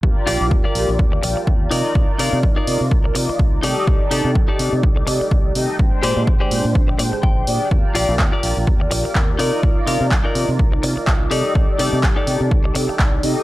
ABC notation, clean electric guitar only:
X:1
M:4/4
L:1/16
Q:"Swing 16ths" 1/4=125
K:Cdor
V:1 name="Clean electric guitar"
z2 [FGd]2 z [FGd]2 z6 z [EFBd]2- | [EFBd] z [EFBd]2 z [EFBd]2 z6 z [EGAd]2- | [EGAd] z [EGAd]2 z [EGAd]2 z8 z | z2 [G_Acd]2 z [GAcd]2 z3 d2 g4 |
z2 [FGd]2 z [FGd]2 z6 z [EFBd]2- | [EFBd] z [EFBf]2 z [EFBd]2 z6 z [EGAd]2- | [EGAd] z [EGAd]2 z [EGAd]2 z8 z |]